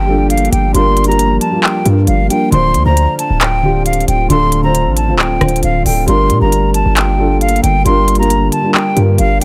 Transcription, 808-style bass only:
Already playing: G1
0.52 G1
0.75 G1
1.86 G2
2.08 G1
2.52 D1
2.74 D2
2.86 D2
3.30 D1
4.08 D1
4.30 D1
4.86 A1
5.13 D1
5.41 D1
5.63 D1
5.86 D1
6.08 G1
6.30 A#2
6.41 G1
6.86 G1
7.63 G1
7.86 G1
8.97 G2
9.19 G1

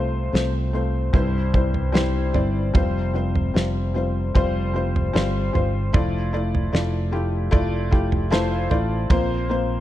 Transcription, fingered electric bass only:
Already playing: C2
0.33 C2
1.14 C2
2.34 G1
2.75 F1
3.55 F1
4.35 F1
5.15 G1
5.55 G1
5.94 F1
6.73 F1
7.53 F1
8.71 A1
9.10 A#1

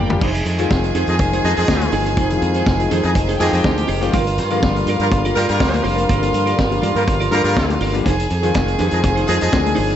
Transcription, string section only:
Already playing: G4 G5
0.22 G#4 G#5
3.40 G4 G5
4.14 F4 F5
8.06 G#4 G#5

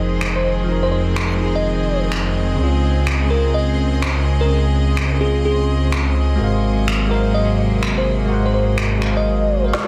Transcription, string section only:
Already playing: D#3 G#3 C4 G#4 D#5
2.59 C#3
6.40 C3
6.66 F#3
6.94 A#3

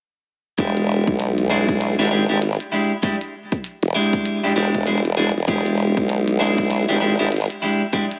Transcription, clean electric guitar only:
0.58 G#3 D4 E4 G4
1.50 G#3 D4 E4 G#4
1.99 G#3 D4 E4 G4
2.11 G#3 D4 E4 G4
2.29 G#3 D4 E4 G4
2.72 G#3 D4 E4 G4
3.02 G#3 D4 E4 G4
3.94 G#3 D4 E4 G4
4.43 G#3 D4 E4 G4
4.56 G#3 D4 E4 G4
4.86 G#3 D4 E4 G#4
5.17 G#3 D4 E4 G#4
5.47 G#3 D4 E4 G4
6.39 G#3 D4 E4 G#4
6.88 G#3 D4 E4 G4
7.01 G#3 D4 E4 G4
7.19 G#3 D4 E4 G4
7.62 G#3 D4 E4 G4
7.93 G#3 D4 E4 G4

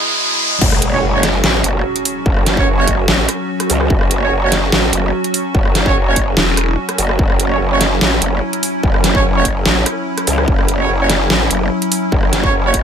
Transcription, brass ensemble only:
0.93 C#4 F#4 C#5
1.13 C#4 F#4 C#5
2.57 C#4 F#4 C#5
2.78 C#4 F#4 C#5
4.22 C#4 F#4 C#5
4.42 C#4 F#4 C#5
5.86 C#4 F#4 C#5
6.06 C#4 F#4 C#5
7.50 C#4 F#4 C#5
7.71 C#4 F#4 C#5
9.15 C#4 F#4 C#5
9.35 C#4 F#4 C#5
10.79 C#4 F#4 C#5
11.00 C#4 F#4 C#5
12.44 C#4 F#4 C#5
12.64 C#4 F#4 C#5

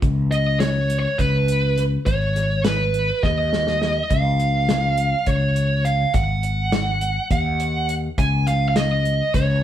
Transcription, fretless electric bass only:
0.02 C#2
1.19 C#2
2.07 G#1
3.24 D#2
4.11 C#2
5.27 C#2
6.14 G#1
7.31 D#2
8.18 C#2
9.34 C#2

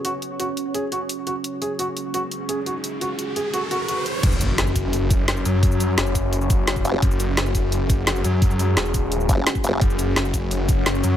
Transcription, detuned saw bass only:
4.23 F#1
4.58 F#1
5.45 F#2
5.98 F#1
7.02 F#1
7.37 F#1
8.24 F#2
8.77 E1
9.81 F#1
10.16 F#1
11.04 F#2

